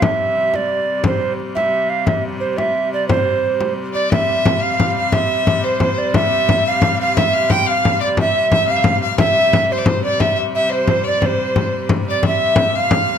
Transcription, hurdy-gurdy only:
\new Staff \with { instrumentName = "Hurdy-gurdy" } { \clef bass \time 6/8 \key c \major \tempo 4. = 118 <c g>2.~ | <c g>2.~ | <c g>2.~ | <c g>2. |
<c g>2.~ | <c g>2.~ | <c g>2.~ | <c g>2. |
<c g>2.~ | <c g>2.~ | <c g>2.~ | <c g>2. |
<c g>2. | }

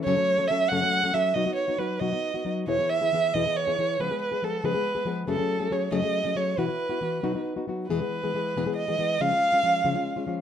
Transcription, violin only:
\new Staff \with { instrumentName = "Violin" } { \time 6/8 \key e \major \tempo 4. = 92 cis''4 e''8 fis''4 e''8 | dis''8 cis''8 b'8 dis''4 r8 | cis''8 e''4 dis''8 cis''4 | b'8 b'8 a'8 b'4 r8 |
a'4 cis''8 dis''4 cis''8 | b'2 r4 | b'2 dis''4 | eis''2~ eis''8 r8 | }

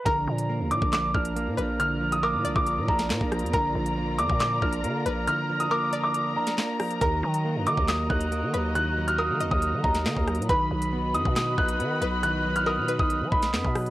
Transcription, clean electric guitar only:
\new Staff \with { instrumentName = "Clean electric guitar" } { \time 4/4 \key bes \phrygian \tempo 4 = 138 d8 f8 bes8 d'4 d'8 bes8 f8 | d8 f8 bes8 d'4 d'8 bes8 f8 | d8 f8 bes8 d'4 d'8 bes8 f8 | d8 f8 bes8 d'4 d'8 bes8 f8 |
ees8 ges8 bes8 ees'4 ees'8 bes8 ges8 | ees8 ges8 bes8 ees'4 ees'8 bes8 ges8 | dis8 fis8 b8 dis'4 dis'8 b8 fis8 | dis8 fis8 b8 dis'4 dis'8 b8 fis8 | }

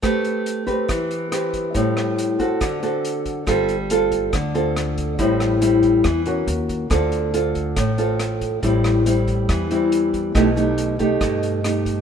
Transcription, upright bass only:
\new Staff \with { instrumentName = "Upright bass" } { \clef bass \time 4/4 \key a \minor \tempo 4 = 140 r1 | r1 | g,,2 d,2 | a,,2 e,4 dis,4 |
d,2 a,,2 | a,,2 e,2 | b,,2 g,2 | }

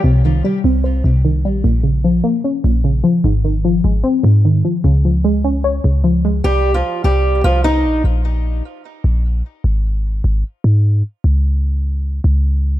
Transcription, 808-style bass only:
\new Staff \with { instrumentName = "808-style bass" } { \clef bass \time 4/4 \key c \phrygian \tempo 4 = 150 c,4 r8 c,4 c,4 bes,,8 | bes,,4. r4 bes,,4 r8 | aes,,4. aes,,8 r8 aes,4 r8 | des,2~ des,8 des,4. |
c,4 r8 c,4 c,4 bes,,8 | bes,,4. r4 bes,,4 r8 | aes,,4. aes,,8 r8 aes,4 r8 | des,2~ des,8 des,4. | }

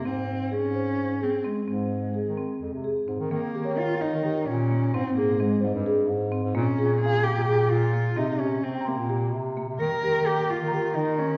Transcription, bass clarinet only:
\new Staff \with { instrumentName = "Bass clarinet" } { \clef bass \time 7/8 \key aes \major \tempo 4 = 130 aes,4~ aes,16 aes,8. aes,8 r4 | aes,4~ aes,16 ees8 r16 f,16 c8 r16 aes,16 ees16 | ees16 r16 ees4~ ees16 ees16 ees8 bes,4 | aes,16 aes,8. aes,16 r16 aes,16 g,8. aes,8. aes,16 |
bes,16 r16 bes,4~ bes,16 bes,16 bes,8 bes,4 | c16 c8. c16 r16 c16 bes,8. c8. c16 | ees16 r16 ees4~ ees16 ees16 ees8 ees4 | }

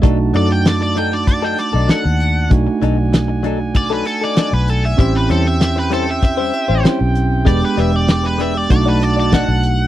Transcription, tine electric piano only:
\new Staff \with { instrumentName = "Tine electric piano" } { \time 4/4 \key b \dorian \tempo 4 = 97 <a d' dis' fis'>1 | <a d' dis' fis'>1 | <bis cis' e' g'>2. <bis cis' e' g'>4 | <gis b d' g'>2 <a d' dis' fis'>2 | }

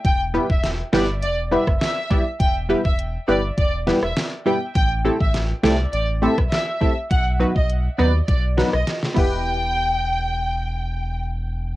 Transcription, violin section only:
\new Staff \with { instrumentName = "Violin section" } { \time 4/4 \key e \minor \tempo 4 = 102 g''16 r8 e''16 r8 d''16 r16 d''16 r16 e''16 r16 e''8. r16 | g''16 r8 e''16 r8 d''16 r16 d''16 r8 e''16 r8 g''16 r16 | g''16 r8 e''16 r8 d''16 r16 d''16 r16 e''16 r16 e''8. r16 | fis''16 r8 dis''16 r8 d''16 r16 d''16 r8 dis''16 r8 g''8~ |
g''2. r4 | }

